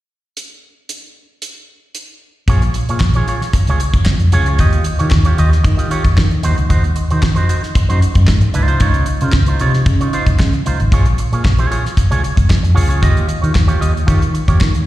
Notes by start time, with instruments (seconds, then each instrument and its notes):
0.37 closed hi-hat
0.89 closed hi-hat
1.42 closed hi-hat
1.95 closed hi-hat
2.48 fingered electric bass A#1, clean electric guitar F4 G#4 C#5, kick, closed hi-hat
2.62 muted clean electric guitar stroke, closed hi-hat
2.74 muted clean electric guitar stroke, closed hi-hat
2.89 fingered electric bass A#2, clean electric guitar F4 G#4 C#5, closed hi-hat
3.00 fingered electric bass A#1, kick, snare, clap
3.14 clean electric guitar F4 G#4 C#5, closed hi-hat
3.27 clean electric guitar F4 G#4 C#5, closed hi-hat
3.41 muted clean electric guitar stroke, snare, closed hi-hat
3.53 muted clean electric guitar stroke, kick, closed hi-hat
3.67 fingered electric bass C#2, clean electric guitar F4 G#4 C#5, closed hi-hat
3.80 muted clean electric guitar stroke, closed hi-hat
3.93 fingered electric bass C#2, muted clean electric guitar stroke, kick, closed hi-hat
4.05 fingered electric bass F2, muted clean electric guitar stroke, kick, snare, clap
4.19 muted clean electric guitar stroke, closed hi-hat
4.32 fingered electric bass C#2, clean electric guitar F4 G#4 C#5, closed hi-hat
4.46 clean electric guitar F4 G#4 C#5, closed hi-hat
4.59 fingered electric bass D#2, clean electric guitar F4 G4 D#5, kick, closed hi-hat
4.73 closed hi-hat
4.84 muted clean electric guitar stroke, closed hi-hat
4.99 fingered electric bass D#3, clean electric guitar F4 G4 C#5, closed hi-hat
5.10 fingered electric bass D#2, muted clean electric guitar stroke, kick, snare, clap
5.25 clean electric guitar F4 G4 C#5, closed hi-hat
5.38 fingered electric bass D#2, clean electric guitar F4 G4 D#5, closed hi-hat
5.51 muted clean electric guitar stroke, snare, closed hi-hat
5.64 fingered electric bass D#3, muted clean electric guitar stroke, kick, closed hi-hat
5.77 clean electric guitar F4 G4 D#5, closed hi-hat
5.90 clean electric guitar F4 G4 C#5, closed hi-hat
6.04 fingered electric bass D#2, muted clean electric guitar stroke, kick, closed hi-hat
6.17 fingered electric bass D#3, kick, snare, clap
6.31 muted clean electric guitar stroke, closed hi-hat
6.43 fingered electric bass D#2, clean electric guitar D#4 F#4 C5, closed hi-hat
6.56 fingered electric bass C#2, muted clean electric guitar stroke, closed hi-hat
6.69 fingered electric bass D#2, clean electric guitar D#4 F#4 C5, kick, closed hi-hat
6.84 muted clean electric guitar stroke, closed hi-hat
6.96 muted clean electric guitar stroke, closed hi-hat
7.10 fingered electric bass D#3, clean electric guitar D#4 F#4 C5, closed hi-hat
7.23 fingered electric bass F2, kick, snare, clap
7.36 clean electric guitar D#4 F#4 C5, closed hi-hat
7.49 clean electric guitar D#4 F#4 C5, closed hi-hat
7.62 muted clean electric guitar stroke, snare, closed hi-hat
7.75 muted clean electric guitar stroke, kick, closed hi-hat
7.89 fingered electric bass F#2, clean electric guitar D#4 F#4 C5, closed hi-hat
8.01 muted clean electric guitar stroke, closed hi-hat
8.14 fingered electric bass F#2, muted clean electric guitar stroke, kick, closed hi-hat
8.27 fingered electric bass G#2, muted clean electric guitar stroke, kick, snare, clap
8.41 muted clean electric guitar stroke, closed hi-hat
8.54 fingered electric bass C#2, clean electric guitar D#4 F4 C5, closed hi-hat
8.68 clean electric guitar D#4 F4 C5, closed hi-hat
8.80 fingered electric bass C#2, clean electric guitar D#4 F4 C#5, kick, closed hi-hat
8.94 closed hi-hat
9.06 muted clean electric guitar stroke, closed hi-hat
9.21 fingered electric bass C#3, clean electric guitar D#4 F4 C5, closed hi-hat
9.32 fingered electric bass C#2, kick, snare, clap
9.46 clean electric guitar D#4 F4 C5, closed hi-hat
9.59 fingered electric bass C3, clean electric guitar D#4 F4 C#5, closed hi-hat
9.73 muted clean electric guitar stroke, snare, closed hi-hat
9.86 fingered electric bass C#3, muted clean electric guitar stroke, kick, closed hi-hat
10.01 clean electric guitar D#4 F4 C#5, closed hi-hat
10.13 clean electric guitar D#4 F4 C5, closed hi-hat
10.27 fingered electric bass C#2, muted clean electric guitar stroke, kick, closed hi-hat
10.39 fingered electric bass C#3, kick, snare, clap
10.53 muted clean electric guitar stroke, closed hi-hat
10.66 fingered electric bass C#2, clean electric guitar D#4 F4 C5, closed hi-hat
10.80 fingered electric bass G#1, muted clean electric guitar stroke, closed hi-hat
10.92 fingered electric bass A#1, clean electric guitar F4 G#4 C#5, kick, closed hi-hat
11.05 muted clean electric guitar stroke, closed hi-hat
11.18 muted clean electric guitar stroke, closed hi-hat
11.32 fingered electric bass A#2, clean electric guitar F4 G#4 C#5, closed hi-hat
11.45 fingered electric bass A#1, kick, snare, clap
11.58 clean electric guitar F4 G#4 C#5, closed hi-hat
11.71 clean electric guitar F4 G#4 C#5, closed hi-hat
11.85 muted clean electric guitar stroke, snare, closed hi-hat
11.97 muted clean electric guitar stroke, kick, closed hi-hat
12.11 fingered electric bass C#2, clean electric guitar F4 G#4 C#5, closed hi-hat
12.23 muted clean electric guitar stroke, closed hi-hat
12.36 fingered electric bass C#2, muted clean electric guitar stroke, kick, closed hi-hat
12.49 fingered electric bass F2, muted clean electric guitar stroke, kick, snare, clap
12.63 muted clean electric guitar stroke, closed hi-hat
12.74 fingered electric bass C#2, clean electric guitar F4 G#4 C#5, open hi-hat
12.89 clean electric guitar F4 G#4 C#5, closed hi-hat
13.02 fingered electric bass D#2, clean electric guitar F4 G4 D#5, kick, closed hi-hat
13.17 closed hi-hat
13.28 muted clean electric guitar stroke, closed hi-hat
13.42 fingered electric bass D#3, clean electric guitar F4 G4 C#5, closed hi-hat
13.54 fingered electric bass D#2, muted clean electric guitar stroke, kick, snare, clap
13.67 clean electric guitar F4 G4 C#5, closed hi-hat
13.80 fingered electric bass D#2, clean electric guitar F4 G4 D#5, closed hi-hat
13.94 muted clean electric guitar stroke, closed hi-hat
14.07 fingered electric bass D#3, clean electric guitar F4 G4 C#5, kick, closed hi-hat
14.21 muted clean electric guitar stroke, closed hi-hat
14.33 muted clean electric guitar stroke, closed hi-hat
14.48 fingered electric bass D#2, clean electric guitar F4 G4 C#5, kick, closed hi-hat
14.61 fingered electric bass D#3, kick, snare, clap
14.74 muted clean electric guitar stroke, closed hi-hat